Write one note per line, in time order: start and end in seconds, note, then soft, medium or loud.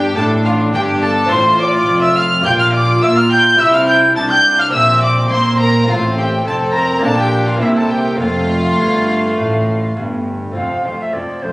0.00 0.16 G1 medium
0.00 0.12 G2 medium
0.00 0.15 G2 medium
0.00 0.15 D4 medium
0.00 1.24 D4 medium
0.00 1.25 F4 medium
0.00 0.16 G4 loud
0.00 1.26 A4 soft
0.00 0.16 G5 medium
0.00 0.16 G5 loud
0.15 0.72 A1 medium
0.15 0.69 A2 medium
0.15 0.72 A2 medium
0.15 1.28 D4 medium
0.15 0.45 A4 loud
0.15 0.24 A5 loud
0.15 0.24 A5 medium
0.44 0.73 F4 medium
0.44 0.52 F5 loud
0.44 0.52 F5 medium
0.73 1.31 G1 medium
0.73 1.30 G2 medium
0.73 1.26 G2 medium
0.73 1.02 G4 loud
0.73 0.82 G5 loud
0.73 0.81 G5 loud
1.02 1.31 A4 loud
1.02 1.30 A5 loud
1.26 2.39 C4 medium
1.26 2.39 F4 medium
1.26 2.40 A4 medium
1.30 1.86 A1 loud
1.30 1.83 A2 medium
1.30 1.87 A2 loud
1.30 2.44 F4 medium
1.30 1.59 C5 loud
1.30 1.59 C6 loud
1.59 2.02 D5 loud
1.59 2.02 D6 loud
1.59 2.01 D6 loud
1.87 2.43 F1 medium
1.87 2.40 F2 medium
1.87 2.44 F2 medium
2.00 2.15 E5 loud
2.00 2.18 E6 loud
2.00 2.16 E6 loud
2.15 2.23 F5 loud
2.15 2.44 F6 loud
2.15 2.45 F6 loud
2.41 3.02 A#1 medium
2.41 2.98 A#2 medium
2.41 3.02 A#2 medium
2.41 3.54 F4 medium
2.41 3.57 F4 loud
2.41 3.55 G4 medium
2.41 2.58 G5 loud
2.41 2.50 G6 loud
2.46 2.52 G6 loud
2.58 2.73 F5 loud
2.58 2.65 F6 loud
2.58 2.74 F6 medium
2.72 3.02 D5 loud
2.72 3.01 D6 loud
2.72 3.04 D6 loud
3.01 3.58 A#2 medium
3.01 3.58 A#3 medium
3.01 3.55 A#3 medium
3.01 3.07 E5 loud
3.01 3.16 E6 loud
3.15 3.21 F5 loud
3.15 3.30 F6 loud
3.15 3.23 F6 loud
3.29 3.37 G5 loud
3.29 3.58 G6 loud
3.29 3.61 G6 loud
3.56 4.15 C2 loud
3.56 4.12 C3 medium
3.56 4.15 C3 loud
3.56 4.68 E4 medium
3.56 4.16 E4 medium
3.56 4.69 G4 medium
3.56 3.72 E5 loud
3.56 3.73 E6 loud
3.56 3.76 E6 loud
3.72 3.78 F5 loud
3.72 3.88 F6 loud
3.72 3.87 F6 loud
3.87 3.95 G5 loud
3.87 3.95 G6 loud
3.87 4.15 G6 loud
4.15 4.72 C2 medium
4.15 4.74 D4 medium
4.15 4.31 A5 loud
4.15 4.22 A5 loud
4.15 4.30 A6 loud
4.30 4.38 G5 loud
4.30 4.61 G6 loud
4.30 4.58 G6 loud
4.59 4.65 F5 loud
4.59 4.73 F6 loud
4.59 4.65 F6 loud
4.70 5.29 A#1 loud
4.70 5.27 A#2 medium
4.70 5.30 A#2 medium
4.70 5.83 C4 medium
4.70 5.30 C4 loud
4.70 5.84 G4 medium
4.70 5.02 E5 loud
4.70 5.01 E6 loud
4.70 5.02 E6 loud
5.01 5.31 D5 loud
5.01 5.30 D6 loud
5.01 5.33 D6 loud
5.30 5.88 A#2 medium
5.30 5.84 A#3 medium
5.30 5.88 A#3 medium
5.30 5.87 C4 medium
5.30 5.59 C5 loud
5.30 5.58 C6 loud
5.30 5.62 C6 loud
5.59 5.87 A#4 loud
5.59 5.87 A#5 loud
5.59 5.88 A#5 loud
5.84 6.98 C4 medium
5.84 6.98 F4 medium
5.84 6.16 F4 loud
5.84 6.17 F5 loud
5.88 6.46 A1 loud
5.88 6.42 A2 medium
5.88 6.46 A2 medium
5.88 6.44 C4 medium
5.88 5.95 F5 loud
6.17 6.45 G4 medium
6.17 6.46 G5 loud
6.17 6.24 G5 medium
6.45 7.03 F1 medium
6.45 6.99 F2 medium
6.45 7.03 F2 medium
6.45 7.02 C4 medium
6.45 6.74 A4 loud
6.45 6.54 A5 loud
6.45 6.77 A5 medium
6.74 7.03 A#4 loud
6.74 7.03 A#5 loud
6.74 7.04 A#5 medium
6.99 7.56 A#3 medium
6.99 7.58 D4 medium
6.99 7.59 F4 medium
7.03 7.62 A#1 medium
7.03 7.57 A#2 medium
7.03 7.62 A#2 medium
7.03 7.62 D4 medium
7.03 7.18 A4 medium
7.03 7.18 A5 loud
7.18 7.46 G4 loud
7.18 7.47 G5 loud
7.18 7.26 G5 medium
7.47 7.61 F4 medium
7.47 7.64 F5 medium
7.47 7.62 F5 loud
7.57 8.15 A#3 medium
7.57 8.15 C4 medium
7.57 8.17 E4 medium
7.61 8.20 C2 medium
7.61 8.16 C3 medium
7.61 8.20 C3 medium
7.61 8.19 A#3 medium
7.61 7.76 E4 medium
7.61 7.67 E5 loud
7.61 7.76 E5 loud
7.76 7.91 A4 medium
7.76 7.91 A5 medium
7.90 8.20 G4 medium
7.90 8.20 G5 medium
7.90 8.22 G5 medium
8.15 8.75 A3 medium
8.15 8.76 C4 medium
8.15 10.51 F4 soft
8.20 8.78 F1 medium
8.20 8.75 F2 medium
8.20 8.78 F2 medium
8.20 10.36 A3 medium
8.20 9.94 F4 loud
8.20 9.94 F5 loud
8.20 9.97 F5 loud
8.79 9.37 G1 medium
8.79 9.35 G2 medium
8.79 9.38 G2 medium
9.38 9.96 A1 medium
9.38 9.93 A2 medium
9.38 9.96 A2 medium
9.97 10.55 G1 medium
9.97 10.52 G2 medium
9.97 10.55 G2 medium
10.51 11.53 A3 soft
10.51 11.53 C4 soft
10.51 11.53 F4 soft
10.56 10.64 F1 soft
10.56 10.82 F2 soft
10.56 10.64 F2 soft
10.56 10.83 F3 soft
10.56 10.83 C4 soft
10.56 10.83 A4 soft
10.56 10.96 F5 medium
10.84 10.93 F1 soft
10.84 11.11 F2 soft
10.84 10.93 F2 soft
10.84 11.14 A3 soft
10.84 11.14 F4 soft
10.84 11.14 C5 soft
11.00 11.14 E5 medium
11.13 11.22 F1 soft
11.13 11.39 F2 soft
11.13 11.23 F2 soft
11.13 11.43 F3 soft
11.13 11.43 C4 soft
11.13 11.43 A4 soft
11.13 11.44 D5 medium
11.42 11.50 F1 soft
11.42 11.53 F2 soft
11.42 11.51 F2 soft
11.42 11.53 A3 soft
11.42 11.53 F4 soft
11.42 11.53 C5 medium
11.42 11.53 C5 soft